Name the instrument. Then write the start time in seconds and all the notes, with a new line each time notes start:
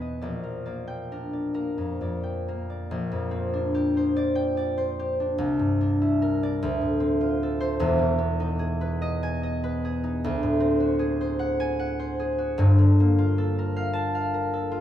harp
Already playing: E2 B2 B3 D#4 B4 E5 G#5
0.01 D#5
0.21 A#1 D5
0.43 A#4
0.66 A#3 D5
0.88 G5
1.12 D4 A#4
1.33 D5
1.54 A#3 A#4
1.78 F2
2.01 F2 D5
2.23 G5
2.48 A#3 A#4
2.70 D5
2.91 A#1
3.12 F2
3.31 C4
3.53 D4
3.75 G4
3.97 C5
4.16 D5
4.35 G5
4.57 D5
4.78 C5
4.99 G4
5.20 D4
5.38 C2
5.59 G2
5.81 D4
6.02 E4
6.22 A#4
6.43 D5
6.63 D2
6.81 A2
7.00 C4
7.21 F4
7.43 A4
7.60 C5
7.80 E1 E2
7.99 B2
8.19 B3
8.40 D#4
8.59 G#4
8.81 B4
9.02 D#5
9.23 G#5
9.43 D#5
9.64 B4
9.85 G#4
10.04 D#4
10.24 D2
10.43 A2
10.60 C4
10.80 F#4
10.99 G#4
11.21 C5
11.39 F#5
11.60 G#5
11.79 F#5
11.99 C5
12.20 G#4
12.38 F#4
12.58 G1 G2
12.79 D3
13.00 A#3
13.18 F4
13.38 A4
13.59 A#4
13.76 F5
13.93 A5
14.15 F5
14.34 A#4
14.53 A4
14.71 F4